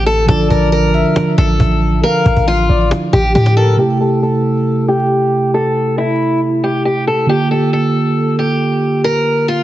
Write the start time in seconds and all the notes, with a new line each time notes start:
Already playing: A1 D3 A3 C4 F4
0.06 A4
0.26 A1 D3 F3 D4 A4 D5, cajon bass
0.31 F4
0.50 A1 A#4, cajon bass
0.72 A#4, cajon slap
0.80 cajon slap
0.87 cajon slap
0.94 E5, cajon slap
1.16 cajon slap
1.38 A1 A4, cajon slap
1.60 A1, cajon bass
1.82 cajon slap
2.03 A#4 F5, cajon slap
2.26 A1, cajon bass
2.37 A1, cajon bass
2.48 F4
2.69 A1 D5, cajon slap
2.91 cajon slap
3.13 A1 G4, cajon bass
3.35 A2 G4, cajon bass
3.46 cajon slap
3.57 A4 A#4
3.64 cajon slap
3.72 cajon slap
3.76 C3 A3 E4 G4
3.81 G4
4.01 A4
4.23 A4
4.88 G4
5.54 A4
5.98 E4
6.64 G4
6.85 G4
7.07 A4
7.26 D3 A#3 F4 G4
7.32 G4
7.51 A4
7.73 A4
8.39 G4
9.04 A#4
9.48 F4